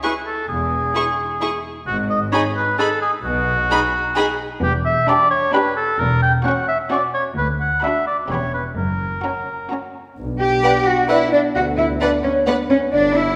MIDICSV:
0, 0, Header, 1, 10, 480
1, 0, Start_track
1, 0, Tempo, 459067
1, 514, Time_signature, 3, 2, 24, 8
1, 8194, Tempo, 462963
1, 13917, End_track
2, 0, Start_track
2, 0, Title_t, "Violin section"
2, 0, Program_c, 0, 48
2, 38, Note_on_c, 0, 85, 42
2, 122, Note_off_c, 0, 85, 0
2, 996, Note_on_c, 0, 85, 48
2, 1079, Note_off_c, 0, 85, 0
2, 1476, Note_on_c, 0, 85, 40
2, 1560, Note_off_c, 0, 85, 0
2, 2432, Note_on_c, 0, 83, 53
2, 2515, Note_off_c, 0, 83, 0
2, 2919, Note_on_c, 0, 83, 47
2, 3003, Note_off_c, 0, 83, 0
2, 3884, Note_on_c, 0, 83, 61
2, 3967, Note_off_c, 0, 83, 0
2, 4354, Note_on_c, 0, 83, 57
2, 4438, Note_off_c, 0, 83, 0
2, 5319, Note_on_c, 0, 83, 62
2, 5673, Note_off_c, 0, 83, 0
2, 5789, Note_on_c, 0, 83, 64
2, 6147, Note_off_c, 0, 83, 0
2, 6757, Note_on_c, 0, 85, 61
2, 7112, Note_off_c, 0, 85, 0
2, 7230, Note_on_c, 0, 85, 52
2, 7588, Note_off_c, 0, 85, 0
2, 8194, Note_on_c, 0, 83, 53
2, 8551, Note_off_c, 0, 83, 0
2, 8673, Note_on_c, 0, 83, 40
2, 9035, Note_off_c, 0, 83, 0
2, 9653, Note_on_c, 0, 82, 43
2, 10011, Note_off_c, 0, 82, 0
2, 10137, Note_on_c, 0, 82, 40
2, 10496, Note_off_c, 0, 82, 0
2, 11094, Note_on_c, 0, 78, 49
2, 11177, Note_off_c, 0, 78, 0
2, 11572, Note_on_c, 0, 78, 42
2, 11655, Note_off_c, 0, 78, 0
2, 12521, Note_on_c, 0, 78, 47
2, 12604, Note_off_c, 0, 78, 0
2, 12988, Note_on_c, 0, 78, 46
2, 13071, Note_off_c, 0, 78, 0
2, 13917, End_track
3, 0, Start_track
3, 0, Title_t, "Clarinet"
3, 0, Program_c, 1, 71
3, 10848, Note_on_c, 1, 79, 67
3, 11334, Note_on_c, 1, 78, 57
3, 11349, Note_off_c, 1, 79, 0
3, 11559, Note_off_c, 1, 78, 0
3, 11565, Note_on_c, 1, 76, 62
3, 11674, Note_off_c, 1, 76, 0
3, 11802, Note_on_c, 1, 74, 60
3, 11911, Note_off_c, 1, 74, 0
3, 12045, Note_on_c, 1, 78, 64
3, 12153, Note_off_c, 1, 78, 0
3, 12279, Note_on_c, 1, 76, 62
3, 12388, Note_off_c, 1, 76, 0
3, 12516, Note_on_c, 1, 74, 57
3, 12626, Note_off_c, 1, 74, 0
3, 12759, Note_on_c, 1, 73, 61
3, 12867, Note_off_c, 1, 73, 0
3, 12994, Note_on_c, 1, 71, 56
3, 13103, Note_off_c, 1, 71, 0
3, 13235, Note_on_c, 1, 73, 68
3, 13343, Note_off_c, 1, 73, 0
3, 13463, Note_on_c, 1, 74, 65
3, 13573, Note_off_c, 1, 74, 0
3, 13705, Note_on_c, 1, 76, 78
3, 13917, Note_off_c, 1, 76, 0
3, 13917, End_track
4, 0, Start_track
4, 0, Title_t, "Flute"
4, 0, Program_c, 2, 73
4, 10861, Note_on_c, 2, 79, 61
4, 11303, Note_off_c, 2, 79, 0
4, 11326, Note_on_c, 2, 78, 54
4, 11388, Note_off_c, 2, 78, 0
4, 11567, Note_on_c, 2, 76, 67
4, 11629, Note_off_c, 2, 76, 0
4, 11807, Note_on_c, 2, 74, 58
4, 11869, Note_off_c, 2, 74, 0
4, 12046, Note_on_c, 2, 78, 64
4, 12109, Note_off_c, 2, 78, 0
4, 12277, Note_on_c, 2, 76, 62
4, 12339, Note_off_c, 2, 76, 0
4, 12509, Note_on_c, 2, 74, 66
4, 12571, Note_off_c, 2, 74, 0
4, 12766, Note_on_c, 2, 73, 67
4, 12986, Note_off_c, 2, 73, 0
4, 12992, Note_on_c, 2, 71, 65
4, 13054, Note_off_c, 2, 71, 0
4, 13230, Note_on_c, 2, 73, 61
4, 13466, Note_on_c, 2, 74, 66
4, 13481, Note_off_c, 2, 73, 0
4, 13704, Note_off_c, 2, 74, 0
4, 13710, Note_on_c, 2, 76, 70
4, 13917, Note_off_c, 2, 76, 0
4, 13917, End_track
5, 0, Start_track
5, 0, Title_t, "Oboe"
5, 0, Program_c, 3, 68
5, 38, Note_on_c, 3, 71, 67
5, 145, Note_off_c, 3, 71, 0
5, 269, Note_on_c, 3, 69, 58
5, 503, Note_off_c, 3, 69, 0
5, 510, Note_on_c, 3, 68, 68
5, 1690, Note_off_c, 3, 68, 0
5, 1952, Note_on_c, 3, 66, 78
5, 2061, Note_off_c, 3, 66, 0
5, 2194, Note_on_c, 3, 75, 82
5, 2303, Note_off_c, 3, 75, 0
5, 2430, Note_on_c, 3, 73, 90
5, 2539, Note_off_c, 3, 73, 0
5, 2678, Note_on_c, 3, 71, 84
5, 2907, Note_off_c, 3, 71, 0
5, 2913, Note_on_c, 3, 69, 78
5, 3146, Note_off_c, 3, 69, 0
5, 3152, Note_on_c, 3, 68, 81
5, 3261, Note_off_c, 3, 68, 0
5, 3384, Note_on_c, 3, 66, 90
5, 4563, Note_off_c, 3, 66, 0
5, 4837, Note_on_c, 3, 67, 93
5, 4944, Note_off_c, 3, 67, 0
5, 5073, Note_on_c, 3, 76, 92
5, 5307, Note_off_c, 3, 76, 0
5, 5318, Note_on_c, 3, 74, 98
5, 5542, Note_off_c, 3, 74, 0
5, 5548, Note_on_c, 3, 73, 97
5, 5781, Note_off_c, 3, 73, 0
5, 5788, Note_on_c, 3, 71, 93
5, 6017, Note_off_c, 3, 71, 0
5, 6024, Note_on_c, 3, 69, 82
5, 6263, Note_on_c, 3, 70, 86
5, 6279, Note_off_c, 3, 69, 0
5, 6500, Note_off_c, 3, 70, 0
5, 6507, Note_on_c, 3, 79, 92
5, 6615, Note_off_c, 3, 79, 0
5, 6749, Note_on_c, 3, 78, 72
5, 6979, Note_off_c, 3, 78, 0
5, 6985, Note_on_c, 3, 76, 82
5, 7095, Note_off_c, 3, 76, 0
5, 7227, Note_on_c, 3, 74, 83
5, 7336, Note_off_c, 3, 74, 0
5, 7465, Note_on_c, 3, 73, 78
5, 7575, Note_off_c, 3, 73, 0
5, 7708, Note_on_c, 3, 71, 80
5, 7817, Note_off_c, 3, 71, 0
5, 7949, Note_on_c, 3, 78, 74
5, 8187, Note_off_c, 3, 78, 0
5, 8192, Note_on_c, 3, 76, 82
5, 8428, Note_off_c, 3, 76, 0
5, 8435, Note_on_c, 3, 74, 64
5, 8543, Note_off_c, 3, 74, 0
5, 8677, Note_on_c, 3, 73, 64
5, 8913, Note_off_c, 3, 73, 0
5, 8925, Note_on_c, 3, 71, 54
5, 9032, Note_off_c, 3, 71, 0
5, 9162, Note_on_c, 3, 70, 61
5, 10114, Note_off_c, 3, 70, 0
5, 13917, End_track
6, 0, Start_track
6, 0, Title_t, "Violin section"
6, 0, Program_c, 4, 48
6, 37, Note_on_c, 4, 68, 46
6, 120, Note_off_c, 4, 68, 0
6, 998, Note_on_c, 4, 68, 42
6, 1081, Note_off_c, 4, 68, 0
6, 1478, Note_on_c, 4, 68, 45
6, 1561, Note_off_c, 4, 68, 0
6, 2441, Note_on_c, 4, 68, 56
6, 2524, Note_off_c, 4, 68, 0
6, 2921, Note_on_c, 4, 68, 49
6, 3005, Note_off_c, 4, 68, 0
6, 3878, Note_on_c, 4, 68, 54
6, 3962, Note_off_c, 4, 68, 0
6, 4360, Note_on_c, 4, 68, 64
6, 4443, Note_off_c, 4, 68, 0
6, 5317, Note_on_c, 4, 67, 72
6, 5672, Note_off_c, 4, 67, 0
6, 5797, Note_on_c, 4, 67, 64
6, 6151, Note_off_c, 4, 67, 0
6, 6754, Note_on_c, 4, 66, 59
6, 7110, Note_off_c, 4, 66, 0
6, 7234, Note_on_c, 4, 66, 59
6, 7591, Note_off_c, 4, 66, 0
6, 8197, Note_on_c, 4, 66, 54
6, 8553, Note_off_c, 4, 66, 0
6, 8677, Note_on_c, 4, 67, 51
6, 9037, Note_off_c, 4, 67, 0
6, 9644, Note_on_c, 4, 66, 43
6, 10007, Note_off_c, 4, 66, 0
6, 10136, Note_on_c, 4, 66, 42
6, 10496, Note_off_c, 4, 66, 0
6, 11097, Note_on_c, 4, 74, 44
6, 11180, Note_off_c, 4, 74, 0
6, 11566, Note_on_c, 4, 74, 47
6, 11649, Note_off_c, 4, 74, 0
6, 12524, Note_on_c, 4, 74, 51
6, 12607, Note_off_c, 4, 74, 0
6, 12998, Note_on_c, 4, 74, 47
6, 13081, Note_off_c, 4, 74, 0
6, 13917, End_track
7, 0, Start_track
7, 0, Title_t, "Viola section"
7, 0, Program_c, 5, 48
7, 38, Note_on_c, 5, 64, 37
7, 122, Note_off_c, 5, 64, 0
7, 995, Note_on_c, 5, 64, 39
7, 1079, Note_off_c, 5, 64, 0
7, 1479, Note_on_c, 5, 64, 44
7, 1563, Note_off_c, 5, 64, 0
7, 2434, Note_on_c, 5, 63, 50
7, 2517, Note_off_c, 5, 63, 0
7, 2909, Note_on_c, 5, 63, 48
7, 2993, Note_off_c, 5, 63, 0
7, 3869, Note_on_c, 5, 63, 55
7, 3953, Note_off_c, 5, 63, 0
7, 4353, Note_on_c, 5, 63, 53
7, 4436, Note_off_c, 5, 63, 0
7, 5314, Note_on_c, 5, 62, 66
7, 5670, Note_off_c, 5, 62, 0
7, 5799, Note_on_c, 5, 62, 61
7, 6152, Note_off_c, 5, 62, 0
7, 6748, Note_on_c, 5, 61, 60
7, 7107, Note_off_c, 5, 61, 0
7, 7229, Note_on_c, 5, 61, 59
7, 7588, Note_off_c, 5, 61, 0
7, 8187, Note_on_c, 5, 62, 51
7, 8547, Note_off_c, 5, 62, 0
7, 8676, Note_on_c, 5, 61, 47
7, 9036, Note_off_c, 5, 61, 0
7, 9650, Note_on_c, 5, 61, 41
7, 10010, Note_off_c, 5, 61, 0
7, 10130, Note_on_c, 5, 61, 40
7, 10493, Note_off_c, 5, 61, 0
7, 11087, Note_on_c, 5, 71, 46
7, 11170, Note_off_c, 5, 71, 0
7, 11568, Note_on_c, 5, 71, 44
7, 11651, Note_off_c, 5, 71, 0
7, 12527, Note_on_c, 5, 71, 46
7, 12610, Note_off_c, 5, 71, 0
7, 13002, Note_on_c, 5, 71, 46
7, 13085, Note_off_c, 5, 71, 0
7, 13917, End_track
8, 0, Start_track
8, 0, Title_t, "Cello section"
8, 0, Program_c, 6, 48
8, 514, Note_on_c, 6, 40, 54
8, 915, Note_off_c, 6, 40, 0
8, 1955, Note_on_c, 6, 44, 57
8, 2356, Note_off_c, 6, 44, 0
8, 3394, Note_on_c, 6, 47, 69
8, 3793, Note_off_c, 6, 47, 0
8, 4832, Note_on_c, 6, 40, 78
8, 5211, Note_off_c, 6, 40, 0
8, 6271, Note_on_c, 6, 40, 75
8, 6650, Note_off_c, 6, 40, 0
8, 7710, Note_on_c, 6, 38, 62
8, 8091, Note_off_c, 6, 38, 0
8, 8675, Note_on_c, 6, 40, 55
8, 9058, Note_off_c, 6, 40, 0
8, 9156, Note_on_c, 6, 42, 51
8, 9543, Note_off_c, 6, 42, 0
8, 10850, Note_on_c, 6, 67, 86
8, 11297, Note_off_c, 6, 67, 0
8, 11327, Note_on_c, 6, 66, 70
8, 11569, Note_off_c, 6, 66, 0
8, 11570, Note_on_c, 6, 64, 79
8, 11805, Note_off_c, 6, 64, 0
8, 11805, Note_on_c, 6, 62, 71
8, 11888, Note_off_c, 6, 62, 0
8, 12045, Note_on_c, 6, 66, 78
8, 12128, Note_off_c, 6, 66, 0
8, 12283, Note_on_c, 6, 64, 71
8, 12366, Note_off_c, 6, 64, 0
8, 12526, Note_on_c, 6, 62, 68
8, 12609, Note_off_c, 6, 62, 0
8, 12762, Note_on_c, 6, 61, 71
8, 12845, Note_off_c, 6, 61, 0
8, 12993, Note_on_c, 6, 59, 75
8, 13076, Note_off_c, 6, 59, 0
8, 13231, Note_on_c, 6, 61, 81
8, 13314, Note_off_c, 6, 61, 0
8, 13472, Note_on_c, 6, 62, 79
8, 13708, Note_off_c, 6, 62, 0
8, 13710, Note_on_c, 6, 64, 82
8, 13917, Note_off_c, 6, 64, 0
8, 13917, End_track
9, 0, Start_track
9, 0, Title_t, "French horn section"
9, 0, Program_c, 7, 60
9, 10606, Note_on_c, 7, 59, 54
9, 10611, Note_on_c, 7, 62, 53
9, 13430, Note_off_c, 7, 59, 0
9, 13432, Note_off_c, 7, 62, 0
9, 13471, Note_on_c, 7, 59, 59
9, 13473, Note_on_c, 7, 62, 61
9, 13917, Note_off_c, 7, 59, 0
9, 13917, Note_off_c, 7, 62, 0
9, 13917, End_track
10, 0, Start_track
10, 0, Title_t, "Double bass section"
10, 0, Program_c, 8, 48
10, 514, Note_on_c, 8, 28, 57
10, 915, Note_off_c, 8, 28, 0
10, 1957, Note_on_c, 8, 32, 66
10, 2357, Note_off_c, 8, 32, 0
10, 3390, Note_on_c, 8, 35, 76
10, 3791, Note_off_c, 8, 35, 0
10, 4834, Note_on_c, 8, 28, 79
10, 5212, Note_off_c, 8, 28, 0
10, 6267, Note_on_c, 8, 28, 76
10, 6648, Note_off_c, 8, 28, 0
10, 7715, Note_on_c, 8, 38, 66
10, 8094, Note_off_c, 8, 38, 0
10, 8674, Note_on_c, 8, 28, 58
10, 9058, Note_off_c, 8, 28, 0
10, 9162, Note_on_c, 8, 30, 51
10, 9546, Note_off_c, 8, 30, 0
10, 10620, Note_on_c, 8, 35, 61
10, 11017, Note_off_c, 8, 35, 0
10, 12051, Note_on_c, 8, 38, 63
10, 12448, Note_off_c, 8, 38, 0
10, 13480, Note_on_c, 8, 31, 62
10, 13875, Note_off_c, 8, 31, 0
10, 13917, End_track
0, 0, End_of_file